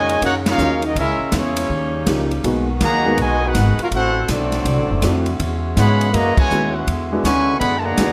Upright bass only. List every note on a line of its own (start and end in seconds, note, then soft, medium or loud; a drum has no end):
0.00 0.20 F2 medium
0.22 0.58 F#2 medium
0.58 0.94 D#2 loud
0.96 1.18 C#2 medium
1.20 muted upright bass stroke soft
1.32 1.68 E2 loud
1.69 2.05 D#2 loud
2.07 2.43 C#2 medium
2.44 2.80 B1 loud
2.81 3.17 D#2 loud
3.17 3.53 B1 medium
3.55 3.77 G#1 medium
3.78 muted upright bass stroke soft
3.91 4.27 A1 loud
4.28 4.64 B1 loud
4.65 4.79 C2 medium
4.79 4.90 A1 medium
4.91 5.02 F#1 medium
5.03 5.38 F2 loud
5.40 5.76 E2 medium
5.77 6.12 G#2 loud
6.14 6.36 F#2 loud
6.51 6.86 D#2 loud
6.87 7.23 E2 medium
7.24 7.60 D2 medium
7.61 7.97 F#2 medium
7.98 8.12 E2 loud